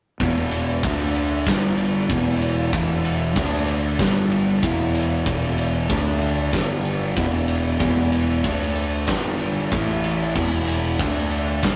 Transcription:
0.20 E1 E2 B2 E3, kick, ride
0.51 ride
0.83 D2 D3 A3 D4, kick, ride
1.15 ride
1.46 G1 G2 D3 G3, kick, snare, ride
1.78 ride
2.09 E1 E2 B2 E3, kick, ride
2.42 ride
2.73 E1 E2 B2 E3, kick, ride
3.05 ride
3.36 D2 D3 A3 D4, kick, ride
3.54 snare
3.68 ride
3.99 G1 G2 D3 G3, kick, snare, ride
4.32 ride
4.62 E1 E2 B2 E3, kick, ride
4.95 ride
5.26 E1 E2 B2 E3, kick, ride
5.58 ride
5.89 D2 D3 A3 D4, kick, ride
6.21 ride
6.52 G1 G2 D3 G3, kick, snare, ride
6.85 ride
7.16 E1 E2 B2 E3, kick, ride
7.48 ride
7.80 E1 E2 B2 E3, kick, ride
8.12 ride
8.44 D2 D3 A3 D4, kick, ride
8.62 snare
8.76 ride
9.07 G1 G2 D3 G3, kick, snare, ride
9.39 ride
9.72 A1 A2 E3 A3, kick, ride
10.04 ride
10.35 E1 E2 B2 E3, kick, crash
10.67 ride
10.99 D2 D3 A3 D4, kick, ride
11.31 ride
11.63 G1 G2 D3 G3, kick, snare, ride

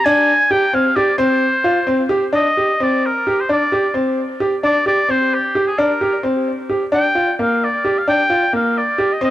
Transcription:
0.05 D4 G#5
0.51 G4 G5
0.73 C4 F5
0.96 G4 D5
1.18 C4 C5
1.64 F4
1.87 C4
2.09 G4
2.33 D4 D#5
2.57 G4
2.80 C4 D5
3.06 A#4
3.27 G4
3.41 C5
3.49 D4 D5
3.72 G4
3.94 C4
4.40 G4
4.63 D4 D5
4.86 G4 D5
5.09 C4 C5
5.34 G4
5.55 G4
5.67 G#4
5.78 D4 A#4
6.01 G4
6.23 C4
6.69 G4
6.92 D4 G5
7.15 F4
7.39 A#3 F5
7.64 D5
7.85 G4
7.99 F5
8.08 D4 G5
8.30 F4
8.53 A#3 F5
8.78 D5
8.98 G4
9.12 D#5
9.21 C4 D#5

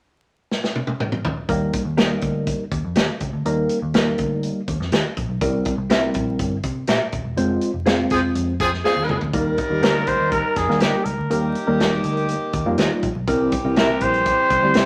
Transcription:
0.51 snare
0.64 snare
0.75 high tom
0.87 high tom
1.00 mid tom
1.12 mid tom
1.25 floor tom
1.49 D#2 G3 A#3 D#4 A#4, kick, closed hi-hat
1.73 kick, closed hi-hat
1.85 D#2
1.97 G3 A#3 D#4 G4 A#4 D#5, snare, closed hi-hat
2.21 D2, kick, closed hi-hat
2.47 kick, closed hi-hat
2.72 D#2, kick, closed hi-hat
2.84 F2
2.95 D#2 G4 A#4 D#5, snare, closed hi-hat
3.20 C#2, kick, closed hi-hat
3.33 D2
3.45 D#2 G3 A#3 D#4 A#4, closed hi-hat
3.69 closed hi-hat
3.82 D#2
3.94 G3 A#3 D#4 G4 A#4 D#5, snare, closed hi-hat
4.18 D2, kick, closed hi-hat
4.43 closed hi-hat
4.68 D#2, kick, closed hi-hat
4.80 F2, snare
4.92 D#2 G4 A#4 D#5, snare, closed hi-hat
5.17 A#1, kick, closed hi-hat
5.29 B1
5.41 C2 G3 C4 E4 A#4, kick, closed hi-hat
5.65 kick, closed hi-hat
5.78 C2
5.90 G3 C4 E4 G4 A#4 E5, snare, closed hi-hat
6.14 A#1, kick, closed hi-hat
6.39 G1, kick, closed hi-hat
6.63 C3, kick, closed hi-hat
6.87 A#2 G4 A#4 E5, snare, closed hi-hat
7.12 D#1, kick, closed hi-hat
7.25 E1
7.36 F1 G#3 C4 F4 C5, closed hi-hat
7.61 closed hi-hat
7.74 F1
7.86 G#3 C4 F4 G#4 C5 F5, snare, closed hi-hat
8.10 F1 F3 C4 G#4, kick, closed hi-hat
8.35 F2, closed hi-hat
8.60 F2 F3 C4 G#4, kick, closed hi-hat
8.73 snare
8.84 F3 C4 G#4 C5 F5, snare
8.96 D#2
9.08 C#2, mid tom
9.21 D2, floor tom
9.33 D#2 G3 A#3 D#4 A#4, kick, closed hi-hat
9.58 kick, closed hi-hat
9.70 D#2 G3 A#3 D#4 G4
9.83 D2 G4 A#4 D#5, snare, closed hi-hat
10.07 C5, kick, closed hi-hat
10.19 D#2
10.31 A#4, kick, closed hi-hat
10.56 F2 G#4, kick, snare, closed hi-hat
10.69 D#2 G3 A#3 D#4 A#4, snare
10.80 D2 G4 A#4 D#5, snare, closed hi-hat
11.05 C#2 A#4, closed hi-hat
11.18 D2
11.30 D#2 G3 A#3 D#4 G4 A#4, closed hi-hat
11.55 closed hi-hat
11.67 D#2 G3 A#3 D#4 A#4
11.80 G4 A#4 D#5, snare, closed hi-hat
12.04 D2, closed hi-hat
12.17 closed hi-hat
12.29 closed hi-hat
12.53 D#2, kick, closed hi-hat
12.66 F2 G3 A#3 D#4 F4
12.78 D#2 G4 A#4 D#5, snare, closed hi-hat
13.03 A#1, kick, closed hi-hat
13.15 B1
13.28 E3 G3 C4 E4 G4 A#4, kick, closed hi-hat
13.52 kick, closed hi-hat
13.64 C2 G3 C4 E4 A#4
13.76 G4 A#4 E5, snare, closed hi-hat
14.01 A#1 C5, kick, closed hi-hat
14.14 closed hi-hat
14.26 kick, closed hi-hat
14.50 C2, kick, closed hi-hat
14.62 D2 G3 C4 E4 G4
14.74 C2 G4 A#4 E5, snare, closed hi-hat

